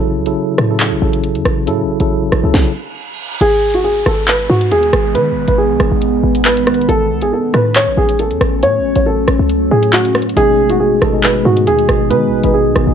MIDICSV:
0, 0, Header, 1, 8, 480
1, 0, Start_track
1, 0, Tempo, 434783
1, 1845, Time_signature, 4, 2, 24, 8
1, 14287, End_track
2, 0, Start_track
2, 0, Title_t, "Upright piano"
2, 0, Program_c, 0, 0
2, 3767, Note_on_c, 0, 68, 110
2, 4111, Note_off_c, 0, 68, 0
2, 4133, Note_on_c, 0, 66, 81
2, 4230, Note_off_c, 0, 66, 0
2, 4241, Note_on_c, 0, 68, 75
2, 4449, Note_off_c, 0, 68, 0
2, 4482, Note_on_c, 0, 69, 82
2, 4690, Note_off_c, 0, 69, 0
2, 4725, Note_on_c, 0, 71, 79
2, 4932, Note_off_c, 0, 71, 0
2, 4962, Note_on_c, 0, 66, 81
2, 5170, Note_off_c, 0, 66, 0
2, 5206, Note_on_c, 0, 68, 95
2, 5657, Note_off_c, 0, 68, 0
2, 5683, Note_on_c, 0, 71, 91
2, 6029, Note_off_c, 0, 71, 0
2, 6054, Note_on_c, 0, 71, 79
2, 6150, Note_off_c, 0, 71, 0
2, 6161, Note_on_c, 0, 68, 73
2, 7079, Note_off_c, 0, 68, 0
2, 7124, Note_on_c, 0, 71, 90
2, 7575, Note_off_c, 0, 71, 0
2, 7603, Note_on_c, 0, 69, 113
2, 7949, Note_off_c, 0, 69, 0
2, 7974, Note_on_c, 0, 68, 77
2, 8070, Note_off_c, 0, 68, 0
2, 8091, Note_on_c, 0, 69, 76
2, 8295, Note_off_c, 0, 69, 0
2, 8327, Note_on_c, 0, 71, 79
2, 8533, Note_off_c, 0, 71, 0
2, 8566, Note_on_c, 0, 73, 95
2, 8772, Note_off_c, 0, 73, 0
2, 8807, Note_on_c, 0, 68, 92
2, 9013, Note_off_c, 0, 68, 0
2, 9046, Note_on_c, 0, 69, 81
2, 9496, Note_off_c, 0, 69, 0
2, 9527, Note_on_c, 0, 73, 103
2, 9871, Note_off_c, 0, 73, 0
2, 9890, Note_on_c, 0, 73, 80
2, 9988, Note_off_c, 0, 73, 0
2, 10005, Note_on_c, 0, 69, 87
2, 10682, Note_off_c, 0, 69, 0
2, 10724, Note_on_c, 0, 68, 84
2, 10931, Note_off_c, 0, 68, 0
2, 10963, Note_on_c, 0, 66, 96
2, 11171, Note_off_c, 0, 66, 0
2, 11446, Note_on_c, 0, 68, 112
2, 11790, Note_off_c, 0, 68, 0
2, 11813, Note_on_c, 0, 66, 81
2, 11909, Note_off_c, 0, 66, 0
2, 11920, Note_on_c, 0, 68, 75
2, 12129, Note_off_c, 0, 68, 0
2, 12161, Note_on_c, 0, 69, 79
2, 12370, Note_off_c, 0, 69, 0
2, 12407, Note_on_c, 0, 71, 81
2, 12613, Note_off_c, 0, 71, 0
2, 12643, Note_on_c, 0, 66, 85
2, 12851, Note_off_c, 0, 66, 0
2, 12886, Note_on_c, 0, 68, 95
2, 13336, Note_off_c, 0, 68, 0
2, 13362, Note_on_c, 0, 71, 93
2, 13708, Note_off_c, 0, 71, 0
2, 13734, Note_on_c, 0, 71, 78
2, 13830, Note_off_c, 0, 71, 0
2, 13841, Note_on_c, 0, 68, 74
2, 14287, Note_off_c, 0, 68, 0
2, 14287, End_track
3, 0, Start_track
3, 0, Title_t, "Tine electric piano"
3, 0, Program_c, 1, 4
3, 0, Note_on_c, 1, 49, 100
3, 0, Note_on_c, 1, 54, 89
3, 0, Note_on_c, 1, 64, 86
3, 0, Note_on_c, 1, 69, 105
3, 160, Control_c, 1, 64, 127
3, 227, Note_off_c, 1, 49, 0
3, 230, Note_off_c, 1, 54, 0
3, 233, Note_off_c, 1, 64, 0
3, 236, Note_off_c, 1, 69, 0
3, 284, Note_on_c, 1, 49, 78
3, 289, Note_on_c, 1, 54, 72
3, 294, Note_on_c, 1, 64, 73
3, 299, Note_on_c, 1, 69, 86
3, 686, Note_off_c, 1, 49, 0
3, 688, Note_off_c, 1, 54, 0
3, 691, Note_off_c, 1, 64, 0
3, 694, Note_off_c, 1, 69, 0
3, 763, Note_on_c, 1, 49, 77
3, 768, Note_on_c, 1, 54, 72
3, 774, Note_on_c, 1, 64, 67
3, 779, Note_on_c, 1, 69, 83
3, 1066, Note_off_c, 1, 49, 0
3, 1068, Note_off_c, 1, 54, 0
3, 1071, Note_off_c, 1, 64, 0
3, 1074, Note_off_c, 1, 69, 0
3, 1118, Note_on_c, 1, 49, 74
3, 1123, Note_on_c, 1, 54, 67
3, 1128, Note_on_c, 1, 64, 58
3, 1134, Note_on_c, 1, 69, 76
3, 1732, Note_off_c, 1, 49, 0
3, 1735, Note_off_c, 1, 54, 0
3, 1738, Note_off_c, 1, 64, 0
3, 1740, Note_off_c, 1, 69, 0
3, 1836, Note_on_c, 1, 49, 95
3, 1842, Note_on_c, 1, 54, 87
3, 1847, Note_on_c, 1, 64, 90
3, 1852, Note_on_c, 1, 69, 109
3, 2146, Note_off_c, 1, 49, 0
3, 2149, Note_off_c, 1, 54, 0
3, 2152, Note_off_c, 1, 64, 0
3, 2154, Note_off_c, 1, 69, 0
3, 2205, Note_on_c, 1, 49, 83
3, 2211, Note_on_c, 1, 54, 70
3, 2216, Note_on_c, 1, 64, 70
3, 2222, Note_on_c, 1, 69, 85
3, 2607, Note_off_c, 1, 49, 0
3, 2609, Note_off_c, 1, 54, 0
3, 2612, Note_off_c, 1, 64, 0
3, 2615, Note_off_c, 1, 69, 0
3, 2686, Note_on_c, 1, 49, 70
3, 2691, Note_on_c, 1, 54, 69
3, 2697, Note_on_c, 1, 64, 68
3, 2702, Note_on_c, 1, 69, 90
3, 2820, Control_c, 1, 64, 0
3, 2987, Note_off_c, 1, 49, 0
3, 2990, Note_off_c, 1, 54, 0
3, 2993, Note_off_c, 1, 64, 0
3, 2995, Note_off_c, 1, 69, 0
3, 11436, Note_on_c, 1, 47, 94
3, 11441, Note_on_c, 1, 56, 91
3, 11446, Note_on_c, 1, 63, 91
3, 11452, Note_on_c, 1, 68, 104
3, 11631, Control_c, 1, 64, 127
3, 11746, Note_off_c, 1, 47, 0
3, 11749, Note_off_c, 1, 56, 0
3, 11751, Note_off_c, 1, 63, 0
3, 11754, Note_off_c, 1, 68, 0
3, 11801, Note_on_c, 1, 47, 85
3, 11807, Note_on_c, 1, 56, 76
3, 11812, Note_on_c, 1, 63, 68
3, 11818, Note_on_c, 1, 66, 91
3, 12205, Note_off_c, 1, 47, 0
3, 12207, Note_off_c, 1, 56, 0
3, 12210, Note_off_c, 1, 63, 0
3, 12213, Note_off_c, 1, 66, 0
3, 12284, Note_on_c, 1, 47, 75
3, 12289, Note_on_c, 1, 56, 70
3, 12295, Note_on_c, 1, 63, 68
3, 12301, Note_on_c, 1, 68, 81
3, 12586, Note_off_c, 1, 47, 0
3, 12589, Note_off_c, 1, 56, 0
3, 12592, Note_off_c, 1, 63, 0
3, 12595, Note_off_c, 1, 68, 0
3, 12635, Note_on_c, 1, 47, 78
3, 12641, Note_on_c, 1, 56, 65
3, 12646, Note_on_c, 1, 63, 63
3, 12652, Note_on_c, 1, 68, 73
3, 13251, Note_off_c, 1, 47, 0
3, 13254, Note_off_c, 1, 56, 0
3, 13257, Note_off_c, 1, 63, 0
3, 13260, Note_off_c, 1, 68, 0
3, 13358, Note_on_c, 1, 47, 93
3, 13362, Note_on_c, 1, 56, 95
3, 13368, Note_on_c, 1, 63, 90
3, 13373, Note_on_c, 1, 68, 113
3, 13667, Note_off_c, 1, 47, 0
3, 13669, Note_off_c, 1, 56, 0
3, 13672, Note_off_c, 1, 63, 0
3, 13675, Note_off_c, 1, 68, 0
3, 13727, Note_on_c, 1, 47, 80
3, 13732, Note_on_c, 1, 56, 65
3, 13738, Note_on_c, 1, 63, 72
3, 13744, Note_on_c, 1, 68, 89
3, 14128, Note_off_c, 1, 47, 0
3, 14130, Note_off_c, 1, 56, 0
3, 14133, Note_off_c, 1, 63, 0
3, 14136, Note_off_c, 1, 68, 0
3, 14205, Note_on_c, 1, 47, 77
3, 14211, Note_on_c, 1, 56, 64
3, 14216, Note_on_c, 1, 63, 70
3, 14221, Note_on_c, 1, 68, 85
3, 14287, Note_off_c, 1, 47, 0
3, 14287, Note_off_c, 1, 56, 0
3, 14287, Note_off_c, 1, 63, 0
3, 14287, Note_off_c, 1, 68, 0
3, 14287, End_track
4, 0, Start_track
4, 0, Title_t, "Ambient pad"
4, 0, Program_c, 2, 92
4, 3765, Note_on_c, 2, 51, 84
4, 3765, Note_on_c, 2, 56, 76
4, 3765, Note_on_c, 2, 59, 95
4, 7566, Note_off_c, 2, 51, 0
4, 7566, Note_off_c, 2, 56, 0
4, 7566, Note_off_c, 2, 59, 0
4, 7603, Note_on_c, 2, 61, 92
4, 7604, Note_on_c, 2, 54, 85
4, 7604, Note_on_c, 2, 57, 76
4, 11405, Note_off_c, 2, 61, 0
4, 11406, Note_off_c, 2, 54, 0
4, 11406, Note_off_c, 2, 57, 0
4, 11444, Note_on_c, 2, 51, 86
4, 11444, Note_on_c, 2, 56, 80
4, 11444, Note_on_c, 2, 59, 95
4, 14287, Note_off_c, 2, 51, 0
4, 14287, Note_off_c, 2, 56, 0
4, 14287, Note_off_c, 2, 59, 0
4, 14287, End_track
5, 0, Start_track
5, 0, Title_t, "808-style bass"
5, 0, Program_c, 3, 38
5, 0, Note_on_c, 3, 33, 106
5, 165, Note_on_c, 3, 37, 97
5, 181, Note_off_c, 3, 33, 0
5, 292, Note_on_c, 3, 33, 99
5, 308, Note_off_c, 3, 37, 0
5, 399, Note_off_c, 3, 33, 0
5, 645, Note_on_c, 3, 45, 103
5, 1013, Note_on_c, 3, 32, 98
5, 1029, Note_off_c, 3, 45, 0
5, 1119, Note_off_c, 3, 32, 0
5, 1125, Note_on_c, 3, 33, 112
5, 1492, Note_on_c, 3, 40, 104
5, 1509, Note_off_c, 3, 33, 0
5, 1599, Note_off_c, 3, 40, 0
5, 1605, Note_on_c, 3, 33, 106
5, 1845, Note_on_c, 3, 45, 98
5, 1861, Note_off_c, 3, 33, 0
5, 2028, Note_on_c, 3, 33, 100
5, 2044, Note_off_c, 3, 45, 0
5, 2202, Note_off_c, 3, 33, 0
5, 2211, Note_on_c, 3, 33, 103
5, 2550, Note_off_c, 3, 33, 0
5, 2564, Note_on_c, 3, 33, 99
5, 2686, Note_off_c, 3, 33, 0
5, 2691, Note_on_c, 3, 37, 97
5, 2800, Note_off_c, 3, 37, 0
5, 3764, Note_on_c, 3, 32, 109
5, 4455, Note_off_c, 3, 32, 0
5, 4484, Note_on_c, 3, 32, 102
5, 4945, Note_off_c, 3, 32, 0
5, 4964, Note_on_c, 3, 44, 113
5, 5204, Note_on_c, 3, 39, 97
5, 5221, Note_off_c, 3, 44, 0
5, 5432, Note_off_c, 3, 39, 0
5, 5444, Note_on_c, 3, 32, 109
5, 5685, Note_on_c, 3, 51, 99
5, 5701, Note_off_c, 3, 32, 0
5, 5867, Note_on_c, 3, 32, 98
5, 5884, Note_off_c, 3, 51, 0
5, 6042, Note_off_c, 3, 32, 0
5, 6051, Note_on_c, 3, 32, 108
5, 6291, Note_on_c, 3, 35, 98
5, 6307, Note_off_c, 3, 32, 0
5, 6398, Note_off_c, 3, 35, 0
5, 6404, Note_on_c, 3, 32, 106
5, 6524, Note_off_c, 3, 32, 0
5, 6530, Note_on_c, 3, 32, 99
5, 6870, Note_off_c, 3, 32, 0
5, 6883, Note_on_c, 3, 32, 110
5, 7363, Note_on_c, 3, 33, 102
5, 7380, Note_off_c, 3, 32, 0
5, 7592, Note_off_c, 3, 33, 0
5, 7603, Note_on_c, 3, 33, 106
5, 7843, Note_on_c, 3, 37, 96
5, 7860, Note_off_c, 3, 33, 0
5, 7970, Note_on_c, 3, 33, 102
5, 7987, Note_off_c, 3, 37, 0
5, 8078, Note_off_c, 3, 33, 0
5, 8323, Note_on_c, 3, 45, 107
5, 8691, Note_on_c, 3, 32, 98
5, 8707, Note_off_c, 3, 45, 0
5, 8798, Note_off_c, 3, 32, 0
5, 8803, Note_on_c, 3, 33, 109
5, 9170, Note_on_c, 3, 40, 105
5, 9187, Note_off_c, 3, 33, 0
5, 9278, Note_off_c, 3, 40, 0
5, 9284, Note_on_c, 3, 33, 108
5, 9523, Note_on_c, 3, 45, 101
5, 9540, Note_off_c, 3, 33, 0
5, 9707, Note_on_c, 3, 33, 99
5, 9724, Note_off_c, 3, 45, 0
5, 9882, Note_off_c, 3, 33, 0
5, 9890, Note_on_c, 3, 33, 105
5, 10230, Note_off_c, 3, 33, 0
5, 10243, Note_on_c, 3, 33, 104
5, 10366, Note_off_c, 3, 33, 0
5, 10370, Note_on_c, 3, 37, 105
5, 10710, Note_off_c, 3, 37, 0
5, 10724, Note_on_c, 3, 45, 110
5, 11415, Note_off_c, 3, 45, 0
5, 11444, Note_on_c, 3, 32, 109
5, 12136, Note_off_c, 3, 32, 0
5, 12164, Note_on_c, 3, 32, 105
5, 12625, Note_off_c, 3, 32, 0
5, 12644, Note_on_c, 3, 44, 113
5, 12884, Note_on_c, 3, 39, 101
5, 12900, Note_off_c, 3, 44, 0
5, 13112, Note_off_c, 3, 39, 0
5, 13124, Note_on_c, 3, 32, 106
5, 13364, Note_on_c, 3, 51, 98
5, 13381, Note_off_c, 3, 32, 0
5, 13549, Note_on_c, 3, 32, 97
5, 13565, Note_off_c, 3, 51, 0
5, 13723, Note_off_c, 3, 32, 0
5, 13733, Note_on_c, 3, 32, 106
5, 13972, Note_on_c, 3, 35, 99
5, 13988, Note_off_c, 3, 32, 0
5, 14079, Note_off_c, 3, 35, 0
5, 14085, Note_on_c, 3, 32, 106
5, 14207, Note_off_c, 3, 32, 0
5, 14211, Note_on_c, 3, 32, 101
5, 14287, Note_off_c, 3, 32, 0
5, 14287, End_track
6, 0, Start_track
6, 0, Title_t, "Downlifter"
6, 0, Program_c, 4, 103
6, 3764, Note_on_c, 4, 60, 86
6, 7604, Note_off_c, 4, 60, 0
6, 14287, End_track
7, 0, Start_track
7, 0, Title_t, "Reverse cymbal"
7, 0, Program_c, 5, 119
7, 2804, Note_on_c, 5, 60, 81
7, 3764, Note_off_c, 5, 60, 0
7, 14287, End_track
8, 0, Start_track
8, 0, Title_t, "Drums"
8, 286, Note_on_c, 9, 42, 70
8, 397, Note_off_c, 9, 42, 0
8, 643, Note_on_c, 9, 37, 92
8, 645, Note_on_c, 9, 42, 66
8, 753, Note_off_c, 9, 37, 0
8, 755, Note_off_c, 9, 42, 0
8, 884, Note_on_c, 9, 39, 108
8, 884, Note_on_c, 9, 42, 73
8, 994, Note_off_c, 9, 39, 0
8, 994, Note_off_c, 9, 42, 0
8, 1250, Note_on_c, 9, 42, 86
8, 1360, Note_off_c, 9, 42, 0
8, 1365, Note_on_c, 9, 42, 81
8, 1475, Note_off_c, 9, 42, 0
8, 1492, Note_on_c, 9, 42, 49
8, 1602, Note_off_c, 9, 42, 0
8, 1606, Note_on_c, 9, 37, 97
8, 1606, Note_on_c, 9, 42, 74
8, 1716, Note_off_c, 9, 37, 0
8, 1716, Note_off_c, 9, 42, 0
8, 1845, Note_on_c, 9, 42, 96
8, 1956, Note_off_c, 9, 42, 0
8, 2208, Note_on_c, 9, 42, 70
8, 2318, Note_off_c, 9, 42, 0
8, 2563, Note_on_c, 9, 37, 97
8, 2565, Note_on_c, 9, 42, 68
8, 2673, Note_off_c, 9, 37, 0
8, 2675, Note_off_c, 9, 42, 0
8, 2804, Note_on_c, 9, 36, 111
8, 2804, Note_on_c, 9, 38, 91
8, 2914, Note_off_c, 9, 36, 0
8, 2914, Note_off_c, 9, 38, 0
8, 3763, Note_on_c, 9, 49, 101
8, 3765, Note_on_c, 9, 42, 97
8, 3874, Note_off_c, 9, 49, 0
8, 3875, Note_off_c, 9, 42, 0
8, 4127, Note_on_c, 9, 42, 70
8, 4238, Note_off_c, 9, 42, 0
8, 4483, Note_on_c, 9, 37, 94
8, 4485, Note_on_c, 9, 42, 66
8, 4594, Note_off_c, 9, 37, 0
8, 4596, Note_off_c, 9, 42, 0
8, 4724, Note_on_c, 9, 39, 114
8, 4724, Note_on_c, 9, 42, 76
8, 4834, Note_off_c, 9, 42, 0
8, 4835, Note_off_c, 9, 39, 0
8, 5090, Note_on_c, 9, 42, 86
8, 5200, Note_off_c, 9, 42, 0
8, 5204, Note_on_c, 9, 42, 87
8, 5315, Note_off_c, 9, 42, 0
8, 5332, Note_on_c, 9, 42, 49
8, 5442, Note_off_c, 9, 42, 0
8, 5444, Note_on_c, 9, 37, 97
8, 5445, Note_on_c, 9, 42, 73
8, 5555, Note_off_c, 9, 37, 0
8, 5555, Note_off_c, 9, 42, 0
8, 5685, Note_on_c, 9, 42, 98
8, 5795, Note_off_c, 9, 42, 0
8, 6046, Note_on_c, 9, 42, 73
8, 6157, Note_off_c, 9, 42, 0
8, 6402, Note_on_c, 9, 37, 95
8, 6404, Note_on_c, 9, 42, 68
8, 6512, Note_off_c, 9, 37, 0
8, 6514, Note_off_c, 9, 42, 0
8, 6643, Note_on_c, 9, 42, 77
8, 6753, Note_off_c, 9, 42, 0
8, 7009, Note_on_c, 9, 42, 89
8, 7119, Note_off_c, 9, 42, 0
8, 7122, Note_on_c, 9, 39, 121
8, 7232, Note_off_c, 9, 39, 0
8, 7254, Note_on_c, 9, 42, 82
8, 7363, Note_off_c, 9, 42, 0
8, 7363, Note_on_c, 9, 42, 68
8, 7364, Note_on_c, 9, 37, 100
8, 7443, Note_off_c, 9, 42, 0
8, 7443, Note_on_c, 9, 42, 54
8, 7474, Note_off_c, 9, 37, 0
8, 7523, Note_off_c, 9, 42, 0
8, 7523, Note_on_c, 9, 42, 38
8, 7604, Note_off_c, 9, 42, 0
8, 7604, Note_on_c, 9, 42, 102
8, 7714, Note_off_c, 9, 42, 0
8, 7966, Note_on_c, 9, 42, 76
8, 8076, Note_off_c, 9, 42, 0
8, 8322, Note_on_c, 9, 37, 99
8, 8324, Note_on_c, 9, 42, 71
8, 8433, Note_off_c, 9, 37, 0
8, 8435, Note_off_c, 9, 42, 0
8, 8563, Note_on_c, 9, 39, 110
8, 8563, Note_on_c, 9, 42, 74
8, 8673, Note_off_c, 9, 39, 0
8, 8673, Note_off_c, 9, 42, 0
8, 8929, Note_on_c, 9, 42, 85
8, 9039, Note_off_c, 9, 42, 0
8, 9044, Note_on_c, 9, 42, 84
8, 9154, Note_off_c, 9, 42, 0
8, 9171, Note_on_c, 9, 42, 50
8, 9281, Note_off_c, 9, 42, 0
8, 9284, Note_on_c, 9, 37, 101
8, 9285, Note_on_c, 9, 42, 73
8, 9395, Note_off_c, 9, 37, 0
8, 9395, Note_off_c, 9, 42, 0
8, 9524, Note_on_c, 9, 42, 100
8, 9634, Note_off_c, 9, 42, 0
8, 9887, Note_on_c, 9, 42, 73
8, 9997, Note_off_c, 9, 42, 0
8, 10242, Note_on_c, 9, 37, 97
8, 10244, Note_on_c, 9, 42, 68
8, 10352, Note_off_c, 9, 37, 0
8, 10354, Note_off_c, 9, 42, 0
8, 10482, Note_on_c, 9, 42, 76
8, 10593, Note_off_c, 9, 42, 0
8, 10849, Note_on_c, 9, 42, 85
8, 10959, Note_off_c, 9, 42, 0
8, 10963, Note_on_c, 9, 39, 120
8, 11073, Note_off_c, 9, 39, 0
8, 11095, Note_on_c, 9, 42, 83
8, 11204, Note_off_c, 9, 42, 0
8, 11204, Note_on_c, 9, 37, 99
8, 11204, Note_on_c, 9, 42, 42
8, 11205, Note_on_c, 9, 46, 52
8, 11284, Note_off_c, 9, 42, 0
8, 11284, Note_on_c, 9, 42, 54
8, 11315, Note_off_c, 9, 37, 0
8, 11315, Note_off_c, 9, 46, 0
8, 11364, Note_off_c, 9, 42, 0
8, 11364, Note_on_c, 9, 42, 69
8, 11445, Note_off_c, 9, 42, 0
8, 11445, Note_on_c, 9, 42, 102
8, 11556, Note_off_c, 9, 42, 0
8, 11807, Note_on_c, 9, 42, 73
8, 11918, Note_off_c, 9, 42, 0
8, 12163, Note_on_c, 9, 37, 100
8, 12165, Note_on_c, 9, 42, 67
8, 12273, Note_off_c, 9, 37, 0
8, 12275, Note_off_c, 9, 42, 0
8, 12404, Note_on_c, 9, 39, 110
8, 12404, Note_on_c, 9, 42, 78
8, 12514, Note_off_c, 9, 39, 0
8, 12514, Note_off_c, 9, 42, 0
8, 12770, Note_on_c, 9, 42, 86
8, 12880, Note_off_c, 9, 42, 0
8, 12885, Note_on_c, 9, 42, 86
8, 12995, Note_off_c, 9, 42, 0
8, 13012, Note_on_c, 9, 42, 48
8, 13122, Note_off_c, 9, 42, 0
8, 13124, Note_on_c, 9, 37, 98
8, 13125, Note_on_c, 9, 42, 72
8, 13235, Note_off_c, 9, 37, 0
8, 13235, Note_off_c, 9, 42, 0
8, 13365, Note_on_c, 9, 42, 98
8, 13475, Note_off_c, 9, 42, 0
8, 13728, Note_on_c, 9, 42, 76
8, 13839, Note_off_c, 9, 42, 0
8, 14083, Note_on_c, 9, 37, 93
8, 14085, Note_on_c, 9, 42, 68
8, 14194, Note_off_c, 9, 37, 0
8, 14196, Note_off_c, 9, 42, 0
8, 14287, End_track
0, 0, End_of_file